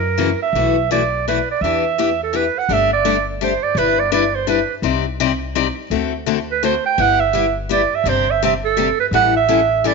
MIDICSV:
0, 0, Header, 1, 4, 480
1, 0, Start_track
1, 0, Key_signature, 1, "major"
1, 0, Tempo, 357782
1, 722, Time_signature, 3, 2, 24, 8
1, 13340, End_track
2, 0, Start_track
2, 0, Title_t, "Clarinet"
2, 0, Program_c, 0, 71
2, 0, Note_on_c, 0, 70, 77
2, 546, Note_off_c, 0, 70, 0
2, 569, Note_on_c, 0, 76, 78
2, 1175, Note_off_c, 0, 76, 0
2, 1232, Note_on_c, 0, 74, 75
2, 1666, Note_off_c, 0, 74, 0
2, 1720, Note_on_c, 0, 71, 60
2, 2002, Note_off_c, 0, 71, 0
2, 2025, Note_on_c, 0, 74, 69
2, 2171, Note_on_c, 0, 76, 83
2, 2191, Note_off_c, 0, 74, 0
2, 2941, Note_off_c, 0, 76, 0
2, 2991, Note_on_c, 0, 69, 71
2, 3165, Note_on_c, 0, 71, 69
2, 3185, Note_off_c, 0, 69, 0
2, 3465, Note_on_c, 0, 78, 81
2, 3485, Note_off_c, 0, 71, 0
2, 3661, Note_on_c, 0, 76, 97
2, 3681, Note_off_c, 0, 78, 0
2, 3923, Note_off_c, 0, 76, 0
2, 3931, Note_on_c, 0, 74, 90
2, 4363, Note_off_c, 0, 74, 0
2, 4604, Note_on_c, 0, 72, 79
2, 4868, Note_on_c, 0, 74, 75
2, 4888, Note_off_c, 0, 72, 0
2, 5070, Note_on_c, 0, 71, 85
2, 5090, Note_off_c, 0, 74, 0
2, 5357, Note_on_c, 0, 74, 79
2, 5377, Note_off_c, 0, 71, 0
2, 5536, Note_off_c, 0, 74, 0
2, 5543, Note_on_c, 0, 74, 77
2, 5832, Note_on_c, 0, 72, 82
2, 5852, Note_off_c, 0, 74, 0
2, 6009, Note_off_c, 0, 72, 0
2, 6017, Note_on_c, 0, 71, 68
2, 6371, Note_off_c, 0, 71, 0
2, 8737, Note_on_c, 0, 71, 74
2, 8893, Note_off_c, 0, 71, 0
2, 8912, Note_on_c, 0, 72, 80
2, 9170, Note_off_c, 0, 72, 0
2, 9199, Note_on_c, 0, 79, 88
2, 9401, Note_on_c, 0, 78, 100
2, 9421, Note_off_c, 0, 79, 0
2, 9655, Note_on_c, 0, 76, 91
2, 9675, Note_off_c, 0, 78, 0
2, 10135, Note_off_c, 0, 76, 0
2, 10351, Note_on_c, 0, 74, 82
2, 10669, Note_on_c, 0, 76, 84
2, 10689, Note_off_c, 0, 74, 0
2, 10850, Note_on_c, 0, 72, 94
2, 10870, Note_off_c, 0, 76, 0
2, 11144, Note_on_c, 0, 76, 81
2, 11164, Note_off_c, 0, 72, 0
2, 11307, Note_off_c, 0, 76, 0
2, 11332, Note_on_c, 0, 76, 81
2, 11451, Note_off_c, 0, 76, 0
2, 11599, Note_on_c, 0, 69, 83
2, 12033, Note_off_c, 0, 69, 0
2, 12072, Note_on_c, 0, 71, 74
2, 12152, Note_off_c, 0, 71, 0
2, 12270, Note_on_c, 0, 78, 102
2, 12528, Note_off_c, 0, 78, 0
2, 12562, Note_on_c, 0, 76, 95
2, 13239, Note_on_c, 0, 74, 80
2, 13259, Note_off_c, 0, 76, 0
2, 13340, Note_off_c, 0, 74, 0
2, 13340, End_track
3, 0, Start_track
3, 0, Title_t, "Steel-string acoustic guitar"
3, 0, Program_c, 1, 25
3, 235, Note_on_c, 1, 49, 74
3, 240, Note_on_c, 1, 58, 85
3, 247, Note_on_c, 1, 52, 84
3, 250, Note_on_c, 1, 61, 68
3, 252, Note_on_c, 1, 66, 76
3, 385, Note_off_c, 1, 49, 0
3, 387, Note_off_c, 1, 58, 0
3, 391, Note_off_c, 1, 52, 0
3, 392, Note_off_c, 1, 61, 0
3, 393, Note_off_c, 1, 66, 0
3, 741, Note_on_c, 1, 47, 56
3, 744, Note_on_c, 1, 52, 61
3, 751, Note_on_c, 1, 57, 63
3, 753, Note_on_c, 1, 64, 60
3, 753, Note_on_c, 1, 66, 69
3, 1008, Note_off_c, 1, 47, 0
3, 1009, Note_off_c, 1, 52, 0
3, 1013, Note_off_c, 1, 57, 0
3, 1014, Note_off_c, 1, 64, 0
3, 1014, Note_off_c, 1, 66, 0
3, 1217, Note_on_c, 1, 52, 87
3, 1219, Note_on_c, 1, 47, 77
3, 1228, Note_on_c, 1, 64, 80
3, 1233, Note_on_c, 1, 57, 90
3, 1237, Note_on_c, 1, 66, 83
3, 1356, Note_off_c, 1, 52, 0
3, 1357, Note_off_c, 1, 47, 0
3, 1362, Note_off_c, 1, 64, 0
3, 1365, Note_off_c, 1, 57, 0
3, 1367, Note_off_c, 1, 66, 0
3, 1713, Note_on_c, 1, 47, 74
3, 1720, Note_on_c, 1, 57, 74
3, 1722, Note_on_c, 1, 52, 71
3, 1724, Note_on_c, 1, 64, 80
3, 1726, Note_on_c, 1, 66, 82
3, 1845, Note_off_c, 1, 47, 0
3, 1848, Note_off_c, 1, 57, 0
3, 1850, Note_off_c, 1, 52, 0
3, 1850, Note_off_c, 1, 64, 0
3, 1851, Note_off_c, 1, 66, 0
3, 2200, Note_on_c, 1, 52, 61
3, 2209, Note_on_c, 1, 59, 56
3, 2209, Note_on_c, 1, 62, 65
3, 2218, Note_on_c, 1, 67, 69
3, 2459, Note_off_c, 1, 52, 0
3, 2463, Note_off_c, 1, 59, 0
3, 2463, Note_off_c, 1, 62, 0
3, 2468, Note_off_c, 1, 67, 0
3, 2662, Note_on_c, 1, 52, 74
3, 2669, Note_on_c, 1, 59, 81
3, 2673, Note_on_c, 1, 62, 85
3, 2674, Note_on_c, 1, 67, 87
3, 2800, Note_off_c, 1, 52, 0
3, 2804, Note_off_c, 1, 59, 0
3, 2806, Note_off_c, 1, 62, 0
3, 2806, Note_off_c, 1, 67, 0
3, 3126, Note_on_c, 1, 52, 71
3, 3131, Note_on_c, 1, 59, 67
3, 3134, Note_on_c, 1, 62, 78
3, 3145, Note_on_c, 1, 67, 75
3, 3272, Note_off_c, 1, 52, 0
3, 3275, Note_off_c, 1, 59, 0
3, 3277, Note_off_c, 1, 62, 0
3, 3282, Note_off_c, 1, 67, 0
3, 3613, Note_on_c, 1, 55, 59
3, 3627, Note_on_c, 1, 57, 63
3, 3627, Note_on_c, 1, 62, 68
3, 3636, Note_on_c, 1, 67, 64
3, 3886, Note_off_c, 1, 55, 0
3, 3893, Note_off_c, 1, 57, 0
3, 3893, Note_off_c, 1, 62, 0
3, 3897, Note_off_c, 1, 67, 0
3, 4091, Note_on_c, 1, 57, 90
3, 4092, Note_on_c, 1, 55, 84
3, 4098, Note_on_c, 1, 62, 86
3, 4100, Note_on_c, 1, 67, 84
3, 4236, Note_off_c, 1, 55, 0
3, 4236, Note_off_c, 1, 57, 0
3, 4239, Note_off_c, 1, 62, 0
3, 4240, Note_off_c, 1, 67, 0
3, 4575, Note_on_c, 1, 55, 76
3, 4578, Note_on_c, 1, 57, 73
3, 4588, Note_on_c, 1, 62, 77
3, 4592, Note_on_c, 1, 67, 76
3, 4717, Note_off_c, 1, 55, 0
3, 4719, Note_off_c, 1, 57, 0
3, 4724, Note_off_c, 1, 62, 0
3, 4726, Note_off_c, 1, 67, 0
3, 5056, Note_on_c, 1, 55, 58
3, 5064, Note_on_c, 1, 62, 61
3, 5071, Note_on_c, 1, 64, 72
3, 5074, Note_on_c, 1, 71, 73
3, 5328, Note_off_c, 1, 55, 0
3, 5332, Note_off_c, 1, 62, 0
3, 5335, Note_off_c, 1, 64, 0
3, 5337, Note_off_c, 1, 71, 0
3, 5524, Note_on_c, 1, 62, 97
3, 5526, Note_on_c, 1, 55, 75
3, 5530, Note_on_c, 1, 64, 100
3, 5533, Note_on_c, 1, 71, 86
3, 5672, Note_off_c, 1, 62, 0
3, 5673, Note_off_c, 1, 55, 0
3, 5675, Note_off_c, 1, 64, 0
3, 5676, Note_off_c, 1, 71, 0
3, 5998, Note_on_c, 1, 55, 76
3, 6001, Note_on_c, 1, 62, 74
3, 6008, Note_on_c, 1, 64, 81
3, 6010, Note_on_c, 1, 71, 89
3, 6148, Note_off_c, 1, 55, 0
3, 6150, Note_off_c, 1, 62, 0
3, 6154, Note_off_c, 1, 64, 0
3, 6155, Note_off_c, 1, 71, 0
3, 6481, Note_on_c, 1, 48, 67
3, 6481, Note_on_c, 1, 55, 62
3, 6487, Note_on_c, 1, 63, 65
3, 6491, Note_on_c, 1, 60, 72
3, 6496, Note_on_c, 1, 74, 77
3, 6500, Note_on_c, 1, 67, 65
3, 6760, Note_off_c, 1, 48, 0
3, 6760, Note_off_c, 1, 55, 0
3, 6763, Note_off_c, 1, 63, 0
3, 6764, Note_off_c, 1, 60, 0
3, 6767, Note_off_c, 1, 74, 0
3, 6769, Note_off_c, 1, 67, 0
3, 6976, Note_on_c, 1, 48, 87
3, 6977, Note_on_c, 1, 55, 86
3, 6979, Note_on_c, 1, 60, 90
3, 6984, Note_on_c, 1, 63, 88
3, 6987, Note_on_c, 1, 67, 84
3, 6989, Note_on_c, 1, 74, 100
3, 7117, Note_off_c, 1, 48, 0
3, 7118, Note_off_c, 1, 55, 0
3, 7119, Note_off_c, 1, 60, 0
3, 7121, Note_off_c, 1, 63, 0
3, 7123, Note_off_c, 1, 67, 0
3, 7124, Note_off_c, 1, 74, 0
3, 7450, Note_on_c, 1, 60, 87
3, 7452, Note_on_c, 1, 55, 84
3, 7453, Note_on_c, 1, 48, 75
3, 7458, Note_on_c, 1, 63, 89
3, 7460, Note_on_c, 1, 67, 79
3, 7466, Note_on_c, 1, 74, 94
3, 7594, Note_off_c, 1, 60, 0
3, 7595, Note_off_c, 1, 48, 0
3, 7595, Note_off_c, 1, 55, 0
3, 7598, Note_off_c, 1, 63, 0
3, 7599, Note_off_c, 1, 67, 0
3, 7602, Note_off_c, 1, 74, 0
3, 7929, Note_on_c, 1, 50, 69
3, 7931, Note_on_c, 1, 57, 70
3, 7932, Note_on_c, 1, 60, 62
3, 7934, Note_on_c, 1, 66, 77
3, 7944, Note_on_c, 1, 69, 68
3, 8203, Note_off_c, 1, 50, 0
3, 8204, Note_off_c, 1, 57, 0
3, 8205, Note_off_c, 1, 60, 0
3, 8206, Note_off_c, 1, 66, 0
3, 8211, Note_off_c, 1, 69, 0
3, 8404, Note_on_c, 1, 50, 84
3, 8406, Note_on_c, 1, 57, 79
3, 8416, Note_on_c, 1, 60, 92
3, 8416, Note_on_c, 1, 66, 93
3, 8421, Note_on_c, 1, 69, 96
3, 8550, Note_off_c, 1, 50, 0
3, 8552, Note_off_c, 1, 57, 0
3, 8557, Note_off_c, 1, 60, 0
3, 8557, Note_off_c, 1, 66, 0
3, 8559, Note_off_c, 1, 69, 0
3, 8892, Note_on_c, 1, 57, 87
3, 8895, Note_on_c, 1, 50, 75
3, 8900, Note_on_c, 1, 60, 88
3, 8904, Note_on_c, 1, 66, 79
3, 8908, Note_on_c, 1, 69, 76
3, 9034, Note_off_c, 1, 57, 0
3, 9036, Note_off_c, 1, 50, 0
3, 9038, Note_off_c, 1, 60, 0
3, 9040, Note_off_c, 1, 66, 0
3, 9042, Note_off_c, 1, 69, 0
3, 9363, Note_on_c, 1, 55, 60
3, 9363, Note_on_c, 1, 59, 66
3, 9371, Note_on_c, 1, 67, 69
3, 9376, Note_on_c, 1, 64, 64
3, 9639, Note_off_c, 1, 55, 0
3, 9639, Note_off_c, 1, 59, 0
3, 9643, Note_off_c, 1, 67, 0
3, 9646, Note_off_c, 1, 64, 0
3, 9838, Note_on_c, 1, 55, 88
3, 9856, Note_on_c, 1, 64, 90
3, 9857, Note_on_c, 1, 67, 94
3, 9859, Note_on_c, 1, 59, 84
3, 9986, Note_off_c, 1, 55, 0
3, 9996, Note_off_c, 1, 64, 0
3, 9996, Note_off_c, 1, 67, 0
3, 9997, Note_off_c, 1, 59, 0
3, 10320, Note_on_c, 1, 55, 78
3, 10334, Note_on_c, 1, 59, 79
3, 10340, Note_on_c, 1, 64, 85
3, 10341, Note_on_c, 1, 67, 85
3, 10467, Note_off_c, 1, 55, 0
3, 10474, Note_off_c, 1, 59, 0
3, 10477, Note_off_c, 1, 64, 0
3, 10478, Note_off_c, 1, 67, 0
3, 10805, Note_on_c, 1, 48, 62
3, 10810, Note_on_c, 1, 55, 64
3, 10816, Note_on_c, 1, 62, 76
3, 10819, Note_on_c, 1, 60, 73
3, 10819, Note_on_c, 1, 67, 68
3, 11079, Note_off_c, 1, 48, 0
3, 11082, Note_off_c, 1, 55, 0
3, 11085, Note_off_c, 1, 62, 0
3, 11086, Note_off_c, 1, 60, 0
3, 11086, Note_off_c, 1, 67, 0
3, 11303, Note_on_c, 1, 55, 86
3, 11304, Note_on_c, 1, 48, 90
3, 11307, Note_on_c, 1, 60, 81
3, 11313, Note_on_c, 1, 62, 94
3, 11320, Note_on_c, 1, 67, 102
3, 11438, Note_off_c, 1, 55, 0
3, 11439, Note_off_c, 1, 48, 0
3, 11440, Note_off_c, 1, 60, 0
3, 11443, Note_off_c, 1, 62, 0
3, 11447, Note_off_c, 1, 67, 0
3, 11762, Note_on_c, 1, 48, 82
3, 11769, Note_on_c, 1, 55, 89
3, 11780, Note_on_c, 1, 62, 79
3, 11780, Note_on_c, 1, 67, 82
3, 11785, Note_on_c, 1, 60, 81
3, 11907, Note_off_c, 1, 48, 0
3, 11911, Note_off_c, 1, 55, 0
3, 11916, Note_off_c, 1, 62, 0
3, 11917, Note_off_c, 1, 67, 0
3, 11919, Note_off_c, 1, 60, 0
3, 12246, Note_on_c, 1, 52, 68
3, 12259, Note_on_c, 1, 55, 73
3, 12260, Note_on_c, 1, 61, 68
3, 12263, Note_on_c, 1, 69, 71
3, 12264, Note_on_c, 1, 64, 74
3, 12519, Note_off_c, 1, 52, 0
3, 12526, Note_off_c, 1, 55, 0
3, 12526, Note_off_c, 1, 61, 0
3, 12528, Note_off_c, 1, 64, 0
3, 12528, Note_off_c, 1, 69, 0
3, 12725, Note_on_c, 1, 55, 88
3, 12726, Note_on_c, 1, 52, 87
3, 12734, Note_on_c, 1, 61, 95
3, 12734, Note_on_c, 1, 69, 89
3, 12738, Note_on_c, 1, 64, 91
3, 12869, Note_off_c, 1, 52, 0
3, 12869, Note_off_c, 1, 55, 0
3, 12873, Note_off_c, 1, 61, 0
3, 12873, Note_off_c, 1, 69, 0
3, 12875, Note_off_c, 1, 64, 0
3, 13205, Note_on_c, 1, 52, 75
3, 13205, Note_on_c, 1, 55, 81
3, 13215, Note_on_c, 1, 64, 81
3, 13217, Note_on_c, 1, 61, 76
3, 13219, Note_on_c, 1, 69, 95
3, 13340, Note_off_c, 1, 52, 0
3, 13340, Note_off_c, 1, 55, 0
3, 13340, Note_off_c, 1, 61, 0
3, 13340, Note_off_c, 1, 64, 0
3, 13340, Note_off_c, 1, 69, 0
3, 13340, End_track
4, 0, Start_track
4, 0, Title_t, "Upright bass"
4, 0, Program_c, 2, 32
4, 0, Note_on_c, 2, 42, 79
4, 429, Note_off_c, 2, 42, 0
4, 709, Note_on_c, 2, 35, 74
4, 1869, Note_off_c, 2, 35, 0
4, 2161, Note_on_c, 2, 40, 73
4, 3316, Note_off_c, 2, 40, 0
4, 3603, Note_on_c, 2, 31, 73
4, 4757, Note_off_c, 2, 31, 0
4, 5029, Note_on_c, 2, 31, 84
4, 6188, Note_off_c, 2, 31, 0
4, 6470, Note_on_c, 2, 36, 76
4, 7628, Note_off_c, 2, 36, 0
4, 7919, Note_on_c, 2, 38, 72
4, 9072, Note_off_c, 2, 38, 0
4, 9364, Note_on_c, 2, 31, 78
4, 10515, Note_off_c, 2, 31, 0
4, 10784, Note_on_c, 2, 31, 79
4, 11942, Note_off_c, 2, 31, 0
4, 12225, Note_on_c, 2, 33, 78
4, 13340, Note_off_c, 2, 33, 0
4, 13340, End_track
0, 0, End_of_file